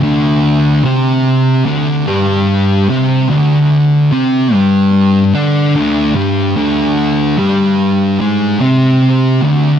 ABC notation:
X:1
M:4/4
L:1/8
Q:1/4=73
K:Cdor
V:1 name="Distorted electric guitar" clef=bass
[D,,D,]2 [C,C]2 [D,,D,] [G,,G,]2 [C,C] | [D,,D,]2 [C,C] [G,,G,]2 [D,D] [D,,D,] [G,,G,] | [D,,D,]2 [G,,G,]2 [^G,,^G,] [C,C]2 [D,,D,] |]